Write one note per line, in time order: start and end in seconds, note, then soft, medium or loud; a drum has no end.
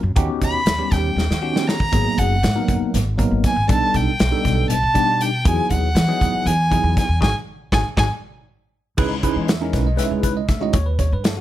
0.03 0.15 F#2 medium
0.16 0.28 D#2 medium
0.16 0.59 B3 medium
0.16 0.59 C#4 medium
0.16 0.60 D#4 medium
0.16 0.59 F#4 medium
0.16 0.60 G4 loud
0.16 kick loud
0.16 closed hi-hat medium
0.41 0.54 D#2 medium
0.41 0.95 B5 medium
0.41 kick medium
0.41 closed hi-hat medium
0.66 0.78 D#2 medium
0.66 snare loud
0.66 closed hi-hat medium
0.78 1.22 G3 medium
0.78 1.22 B3 medium
0.78 1.22 C#4 medium
0.78 1.22 D#4 medium
0.78 1.22 G4 medium
0.91 1.15 D#2 medium
0.91 1.69 G5 medium
0.91 kick medium
0.91 snare soft
0.91 closed hi-hat medium
1.16 1.29 D#2 medium
1.16 snare medium
1.29 1.89 D#3 medium
1.29 snare medium
1.42 1.76 B3 medium
1.42 1.77 C#4 medium
1.42 1.77 D#4 medium
1.42 1.76 F#4 medium
1.42 1.77 G4 medium
1.56 snare medium
1.67 2.20 A#5 medium
1.67 snare medium
1.80 kick medium
1.92 2.05 G#1 medium
1.92 2.35 F#3 medium
1.92 2.35 A#3 medium
1.92 2.36 B3 medium
1.92 2.36 D#4 medium
1.92 2.36 G#4 medium
1.92 kick loud
1.92 closed hi-hat medium
2.18 2.42 F#1 medium
2.18 2.69 F#5 loud
2.18 kick medium
2.18 closed hi-hat medium
2.43 2.55 G#2 loud
2.43 snare medium
2.43 closed hi-hat medium
2.55 2.98 F#3 medium
2.55 2.98 A#3 medium
2.55 2.98 B3 medium
2.55 2.99 D#4 medium
2.55 2.99 A#4 medium
2.68 2.80 F#1 medium
2.68 kick medium
2.68 closed hi-hat medium
2.81 muted upright bass stroke soft
2.94 3.29 G#1 loud
2.94 snare soft
2.94 closed hi-hat medium
3.18 3.52 F#3 medium
3.18 3.53 A#3 medium
3.18 3.53 B3 medium
3.18 3.53 D#4 medium
3.18 3.53 A#4 medium
3.18 kick medium
3.18 closed hi-hat medium
3.31 3.43 G#1 medium
3.44 3.69 G#5 medium
3.44 kick medium
3.44 snare soft
3.44 closed hi-hat medium
3.56 3.68 G#1 medium
3.68 3.81 B1 medium
3.68 4.11 G3 medium
3.68 4.11 B3 medium
3.68 4.12 D4 medium
3.68 4.12 D#4 medium
3.68 4.12 A4 medium
3.68 3.97 A5 loud
3.68 kick loud
3.68 closed hi-hat medium
3.94 4.06 B1 medium
3.94 4.69 G5 medium
3.94 kick medium
3.94 closed hi-hat medium
4.19 4.32 B1 loud
4.19 snare loud
4.19 closed hi-hat medium
4.31 4.75 G3 medium
4.31 4.75 B3 medium
4.31 4.75 D4 medium
4.31 4.75 D#4 medium
4.31 4.75 A4 medium
4.45 4.69 B1 medium
4.45 kick medium
4.45 snare soft
4.45 closed hi-hat medium
4.70 4.82 B1 loud
4.70 5.23 A5 loud
4.70 closed hi-hat medium
4.83 5.42 B2 medium
4.94 5.29 G3 medium
4.94 5.29 B3 medium
4.94 5.29 D4 medium
4.94 5.29 D#4 medium
4.94 5.29 G4 medium
4.94 kick medium
4.94 closed hi-hat medium
5.21 5.49 G5 medium
5.21 closed hi-hat medium
5.45 5.57 E2 medium
5.45 5.88 F#3 medium
5.45 5.88 B3 medium
5.45 5.88 D#4 medium
5.45 5.88 E4 medium
5.45 5.89 G#4 medium
5.45 5.71 G#5 medium
5.45 kick loud
5.45 closed hi-hat medium
5.70 5.94 D#2 medium
5.70 6.48 F#5 loud
5.70 kick medium
5.70 closed hi-hat medium
5.95 6.07 E3 loud
5.95 snare loud
5.95 closed hi-hat medium
6.08 6.51 F#3 medium
6.08 6.51 B3 medium
6.08 6.51 D#4 medium
6.08 6.51 E4 medium
6.08 6.51 G#4 medium
6.21 6.33 D#2 loud
6.21 kick medium
6.21 closed hi-hat medium
6.34 muted upright bass stroke soft
6.46 6.82 E2 loud
6.46 6.98 G#5 medium
6.46 closed hi-hat medium
6.70 7.05 F#3 medium
6.70 7.05 B3 medium
6.70 7.05 D#4 medium
6.70 7.06 E4 medium
6.70 7.06 G#4 medium
6.70 kick medium
6.70 closed hi-hat medium
6.83 6.96 E2 medium
6.97 7.21 G#5 medium
6.97 kick medium
6.97 snare soft
6.97 closed hi-hat medium
7.09 7.21 E2 medium
7.21 7.31 G#1 medium
7.21 7.29 D#4 medium
7.21 7.29 F#4 medium
7.21 7.29 G#4 loud
7.21 7.30 G#5 loud
7.21 kick medium
7.21 snare medium
7.72 7.82 G#1 loud
7.72 7.81 D#4 medium
7.72 7.81 F#4 medium
7.72 7.81 G#4 medium
7.72 7.81 G#5 medium
7.72 kick medium
7.72 snare medium
7.97 8.07 G#1 loud
7.97 8.05 D#4 medium
7.97 8.05 F#4 medium
7.97 8.05 G#4 medium
7.97 8.06 G#5 loud
7.97 kick medium
7.97 snare medium
8.97 9.33 C#2 medium
8.97 9.15 G#3 medium
8.97 9.15 C#4 medium
8.97 9.15 D#4 medium
8.97 9.15 E4 medium
8.97 9.16 B4 loud
8.97 kick loud
8.97 crash loud
9.23 9.49 G#3 medium
9.23 9.49 C#4 medium
9.23 9.49 D#4 medium
9.23 9.49 E4 medium
9.23 9.49 B4 loud
9.23 kick medium
9.23 closed hi-hat medium
9.35 9.71 E2 medium
9.48 9.62 E5 medium
9.48 snare loud
9.48 closed hi-hat medium
9.61 9.87 G#3 medium
9.61 9.87 C#4 medium
9.61 9.87 D#4 medium
9.61 9.87 E4 medium
9.61 9.74 G#4 medium
9.61 9.87 A#4 medium
9.73 9.97 B1 medium
9.73 9.86 B4 medium
9.73 kick medium
9.73 snare soft
9.73 closed hi-hat medium
9.87 9.99 D#5 medium
9.97 10.41 G#3 medium
9.97 10.41 C#4 medium
9.97 10.41 D#4 medium
9.97 10.41 E4 medium
9.97 10.23 B4 medium
9.97 10.11 E5 medium
9.97 snare soft
9.97 closed hi-hat medium
10.10 10.46 C#2 medium
10.10 10.24 G#4 medium
10.23 10.36 B4 medium
10.23 kick medium
10.23 closed hi-hat medium
10.37 10.49 D#5 medium
10.48 10.73 D2 medium
10.48 10.61 E5 medium
10.48 kick medium
10.48 snare soft
10.48 closed hi-hat medium
10.60 10.74 G#3 medium
10.60 10.74 C#4 medium
10.60 10.74 D#4 medium
10.60 10.74 E4 medium
10.60 10.74 F#4 medium
10.60 10.75 D#5 medium
10.73 11.10 D#2 loud
10.73 10.86 C#5 medium
10.73 kick loud
10.73 closed hi-hat medium
10.86 10.99 B4 medium
10.99 11.12 C#5 medium
10.99 kick medium
10.99 closed hi-hat medium
11.12 11.41 G2 medium
11.12 11.25 B4 medium
11.24 11.37 A4 medium
11.24 snare loud
11.24 closed hi-hat medium
11.37 11.41 F#4 medium